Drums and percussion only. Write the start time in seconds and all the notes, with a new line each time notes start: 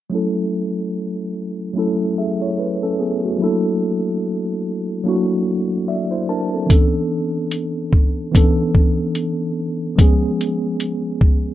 6.70 kick, closed hi-hat
7.51 closed hi-hat
7.93 kick
8.35 kick, closed hi-hat
8.75 kick
9.15 closed hi-hat
9.99 kick, closed hi-hat
10.41 closed hi-hat
10.80 closed hi-hat
11.21 kick